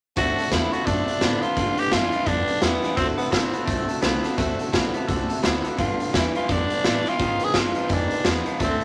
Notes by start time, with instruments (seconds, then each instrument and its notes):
0.16 upright bass D2, steel-string acoustic guitar D3 A3 C4 F#4 A4, clean electric guitar D3 A3, tenor saxophone F#4, kick, closed hi-hat
0.38 steel-string acoustic guitar C4 F#4 A4, closed hi-hat
0.52 upright bass E2, clean electric guitar D3 B3, steel-string acoustic guitar D3 A3 C4 F#4 A4, tenor saxophone E4, kick, snare, closed hi-hat
0.72 clean electric guitar D3 B3, steel-string acoustic guitar C4 F#4 A4, tenor saxophone F#4, closed hi-hat
0.86 upright bass F#2, clean electric guitar D3 A3, steel-string acoustic guitar A3 C4 F#4 A4, tenor saxophone D4, kick, closed hi-hat
1.07 steel-string acoustic guitar C4 F#4 A4, muted upright bass stroke, closed hi-hat
1.21 upright bass A2, steel-string acoustic guitar D3 A3 C4 F#4 A4, clean electric guitar D3 B3, snare, closed hi-hat
1.42 clean electric guitar D3 B3, steel-string acoustic guitar C4 F#4 A4, tenor saxophone F4, muted upright bass stroke, closed hi-hat
1.56 upright bass G2, clean electric guitar G2 D3, steel-string acoustic guitar G3 D4 F4 B4, kick, closed hi-hat
1.77 steel-string acoustic guitar D4 F4 B4, tenor saxophone G4, muted upright bass stroke, closed hi-hat
1.91 upright bass F#2, clean electric guitar G2 E3, steel-string acoustic guitar G3 D4 F4 B4, tenor saxophone F4, kick, snare, closed hi-hat
2.12 clean electric guitar G2 E3, steel-string acoustic guitar D4 F4 B4, closed hi-hat
2.26 upright bass F2, clean electric guitar G2 D3, steel-string acoustic guitar G3 D4 F4 B4, tenor saxophone D4, kick, closed hi-hat
2.47 steel-string acoustic guitar D4 F4 B4, closed hi-hat
2.61 upright bass E2, clean electric guitar G2 E3, steel-string acoustic guitar G3 D4 F4 B4, tenor saxophone B3, snare, closed hi-hat
2.81 clean electric guitar G2 E3, steel-string acoustic guitar D4 F4 B4, snare, closed hi-hat
2.96 upright bass D2, clean electric guitar D3 A3, steel-string acoustic guitar D3 A3 C4 F#4 A4, tenor saxophone C4, kick, closed hi-hat
3.17 tenor saxophone B3, steel-string acoustic guitar C4 F#4 A4, closed hi-hat
3.31 upright bass C2, clean electric guitar D3 B3, steel-string acoustic guitar D3 A3 C4 F#4 A4, tenor saxophone C4, kick, snare, closed hi-hat
3.53 clean electric guitar D3 B3, steel-string acoustic guitar C4 F#4 A4, closed hi-hat
3.66 upright bass B1, clean electric guitar D3 A3, steel-string acoustic guitar A3 C4 F#4, kick, closed hi-hat
3.70 steel-string acoustic guitar A4
3.88 steel-string acoustic guitar C4 F#4 A4, muted upright bass stroke, closed hi-hat
4.01 upright bass C2, clean electric guitar D3 B3, steel-string acoustic guitar D3 A3 C4 F#4 A4, snare, closed hi-hat
4.23 clean electric guitar D3 B3, steel-string acoustic guitar F#4 A4, snare, closed hi-hat
4.27 steel-string acoustic guitar C4
4.37 upright bass D2, clean electric guitar D3 A3, steel-string acoustic guitar D3 A3 C4 F#4 A4, kick, closed hi-hat
4.59 steel-string acoustic guitar C4 F#4 A4, muted upright bass stroke, closed hi-hat
4.73 upright bass B1, clean electric guitar D3 B3, steel-string acoustic guitar D3 A3 C4 F#4 A4, kick, snare, closed hi-hat
4.94 clean electric guitar D3 B3, steel-string acoustic guitar C4 F#4 A4, closed hi-hat
5.08 upright bass C2, clean electric guitar D3 A3, steel-string acoustic guitar A3 C4 F#4 A4, kick, closed hi-hat
5.29 steel-string acoustic guitar C4 F#4 A4, closed hi-hat
5.43 upright bass D2, clean electric guitar D3 B3, steel-string acoustic guitar D3 A3 C4 F#4 A4, snare, closed hi-hat
5.64 clean electric guitar D3 B3, steel-string acoustic guitar C4 F#4 A4, muted upright bass stroke, closed hi-hat
5.77 clean electric guitar G2 D3, upright bass G2, steel-string acoustic guitar G3 D4 F4 B4, tenor saxophone F4, kick, closed hi-hat
6.00 steel-string acoustic guitar D4 F4 B4, muted upright bass stroke, closed hi-hat
6.13 upright bass E2, clean electric guitar G2 E3, steel-string acoustic guitar G3 D4 F4 B4, tenor saxophone E4, kick, snare, closed hi-hat
6.35 clean electric guitar G2 E3, steel-string acoustic guitar D4 F4 B4, tenor saxophone F4, closed hi-hat
6.48 upright bass F2, clean electric guitar G2 D3, steel-string acoustic guitar G3 D4 F4 B4, tenor saxophone D4, kick, closed hi-hat
6.70 steel-string acoustic guitar D4 F4 B4, closed hi-hat
6.84 clean electric guitar G2 E3, upright bass A2, steel-string acoustic guitar G3 D4 F4 B4, snare, closed hi-hat
7.05 clean electric guitar G2 E3, steel-string acoustic guitar D4 F4 B4, tenor saxophone F4, snare, closed hi-hat
7.19 clean electric guitar G#2 D#3, upright bass G#2, steel-string acoustic guitar G#3 D4 F4 B4, kick, closed hi-hat
7.40 steel-string acoustic guitar F4 B4, muted upright bass stroke, closed hi-hat
7.44 steel-string acoustic guitar D4, tenor saxophone G#4
7.54 upright bass G2, clean electric guitar G#2 F3, steel-string acoustic guitar G#3 D4 F4 B4, kick, snare, closed hi-hat
7.59 tenor saxophone F4
7.75 clean electric guitar G#2 F3, steel-string acoustic guitar D4 F4 B4, muted upright bass stroke, closed hi-hat
7.89 upright bass F2, clean electric guitar G#2 D#3, steel-string acoustic guitar G#3 D4 F4, kick, closed hi-hat
7.93 tenor saxophone D4, steel-string acoustic guitar B4
8.10 steel-string acoustic guitar D4 F4 B4, muted upright bass stroke, closed hi-hat
8.24 upright bass E2, clean electric guitar G#2 F3, steel-string acoustic guitar G#3 D4 F4, snare, closed hi-hat
8.29 tenor saxophone B3, steel-string acoustic guitar B4
8.46 clean electric guitar G#2 F3, steel-string acoustic guitar D4 F4 B4, closed hi-hat
8.60 upright bass D2, clean electric guitar D3 A3, steel-string acoustic guitar D3 A3 C4 F#4 A4, tenor saxophone C4, kick, closed hi-hat
8.81 closed hi-hat